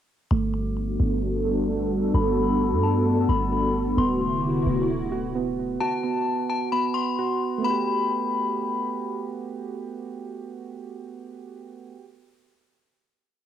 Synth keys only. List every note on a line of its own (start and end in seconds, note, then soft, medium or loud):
0.31 0.98 A3 loud
0.99 1.67 A3 medium
1.46 2.13 A4 medium
1.68 2.36 A3 medium
2.14 3.51 A4 loud
2.37 3.05 A3 medium
3.06 3.98 A3 medium
3.52 3.98 A4 medium
3.97 4.65 B3 medium
4.66 5.34 B3 medium
5.12 5.80 F#4 medium
5.35 6.03 B3 medium
5.81 7.18 F#4 loud
6.04 6.71 B3 medium
6.72 7.61 B3 medium
7.19 7.64 F#4 medium
7.58 11.93 A3 medium
7.58 11.97 B3 medium
7.66 12.01 F#4 medium
7.66 12.05 G4 medium